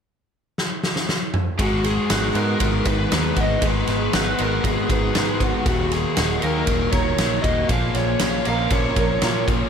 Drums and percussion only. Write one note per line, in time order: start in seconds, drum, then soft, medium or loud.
0.58 snare medium
0.83 snare medium
0.96 snare medium
1.09 snare medium
1.34 mid tom medium
1.59 kick medium
1.59 ride medium
1.84 snare soft
1.84 ride medium
2.10 snare loud
2.10 ride loud
2.35 ride medium
2.60 kick medium
2.60 ride loud
2.85 kick medium
2.85 ride medium
3.12 snare loud
3.12 ride medium
3.36 kick medium
3.36 ride medium
3.62 kick loud
3.62 ride medium
3.87 snare soft
3.87 ride medium
4.13 snare loud
4.13 ride medium
4.38 ride medium
4.64 kick medium
4.64 ride medium
4.90 kick medium
4.90 ride medium
5.15 snare loud
5.15 ride medium
5.40 kick medium
5.40 ride medium
5.66 kick loud
5.66 ride medium
5.92 snare soft
5.92 ride medium
6.17 snare loud
6.17 ride medium
6.42 ride medium
6.67 kick medium
6.67 ride medium
6.92 kick medium
6.92 ride medium
7.18 snare loud
7.18 ride medium
7.44 kick medium
7.44 ride medium
7.69 kick medium
7.69 ride medium
7.95 snare soft
7.95 ride medium
8.19 snare loud
8.19 ride loud
8.45 ride medium
8.70 kick medium
8.70 ride medium
8.96 kick medium
8.96 ride medium
9.22 snare loud
9.22 ride medium
9.48 kick medium
9.48 ride medium